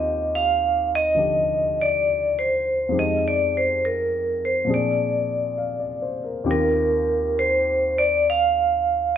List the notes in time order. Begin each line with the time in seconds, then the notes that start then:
Already playing: D#2 D#3 C4 F4 G4 D#5
0.35 F5
0.95 D#5
1.15 D3 F3 G4
1.82 D5
2.39 C5
2.89 F2 F3 G#3 D#4
2.94 G4
2.99 D#5
3.28 D5
3.57 C5
3.85 A#4
4.45 C5
4.65 A#2 F3 C4
4.69 D4 G#4
4.74 D5
5.58 F5
5.80 D5
6.02 C5
6.24 A#4
6.44 D#2 D#3 C4 F4 G4
6.51 A#4
7.39 C5
7.98 D5
8.30 F5